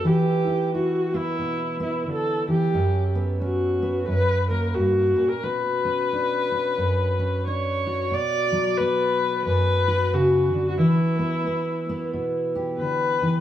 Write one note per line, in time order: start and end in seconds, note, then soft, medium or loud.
0.00 1.14 B3 soft
0.04 2.47 E3 medium
0.04 0.45 E4 soft
0.04 0.74 G4 medium
0.47 0.73 E4 soft
0.75 2.72 E4 soft
0.75 1.17 F#4 medium
1.14 1.79 B3 soft
1.14 1.82 E4 medium
1.39 2.06 B2 medium
1.80 2.71 B3 medium
1.80 2.06 E4 medium
2.06 2.47 D3 medium
2.12 2.48 A4 medium
2.48 2.75 E3 medium
2.48 3.12 G4 medium
2.74 4.06 F#2 medium
2.74 3.41 C#4 medium
3.15 3.81 B3 medium
3.41 5.84 C#4 medium
3.41 4.05 F#4 medium
3.82 4.06 B3 medium
4.08 4.75 F#2 medium
4.08 4.46 B4 medium
4.50 5.40 A#3 soft
4.50 4.76 A#4 medium
4.75 5.16 G2 soft
4.75 5.30 F#4 medium
5.16 5.43 A#2 medium
5.29 5.45 A#4 medium
5.43 6.77 B2 medium
5.43 7.85 F#4 medium
5.43 7.45 B4 medium
5.85 6.51 C#4 medium
6.13 7.46 D4 medium
6.52 7.18 C#4 soft
6.78 8.11 F#2 soft
7.19 8.09 C#4 medium
7.47 8.10 D4 soft
7.47 8.15 C#5 medium
7.87 9.87 F#4 medium
8.11 9.45 B2 medium
8.11 8.79 D5 medium
8.52 10.76 F#3 medium
8.78 11.19 B3 medium
8.78 9.45 B4 medium
9.45 10.79 F#2 medium
9.45 10.16 B4 medium
9.88 10.80 F#4 medium
10.13 10.53 C#3 medium
10.13 10.67 F#4 medium
10.53 10.79 D3 medium
10.68 10.79 F#4 medium
10.78 13.20 E3 medium
10.78 12.10 E4 medium
11.19 11.46 B3 medium
11.47 11.87 B3 soft
11.89 13.40 B3 medium
12.13 12.80 B2 medium
12.55 13.40 G4 medium
12.79 13.21 D3 medium
12.79 13.40 B4 medium
13.22 13.40 E3 medium